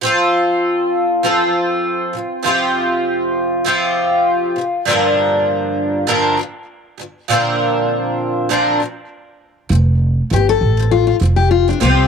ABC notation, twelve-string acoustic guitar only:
X:1
M:4/4
L:1/16
Q:"Swing 16ths" 1/4=99
K:F
V:1 name="Twelve-string acoustic guitar" clef=bass
[F,CFA]8 [F,CFA]6 [C,F,]2 | [C,F,CFG]8 [C,F,CFG]6 [C,F,]2 | [G,,D,F,B,DB]8 [G,,D,F,B,DB]2 [G,,D,F,]2 z2 [G,,D,F,]2 | [B,,D,F,CDB]8 [B,,D,F,CDB]2 [B,,D,F,]2 z4 |
[F,C]2 z2 [F,C]2 z [F,C]2 z [F,C]2 z [F,C] [C,F,CFG]2 |]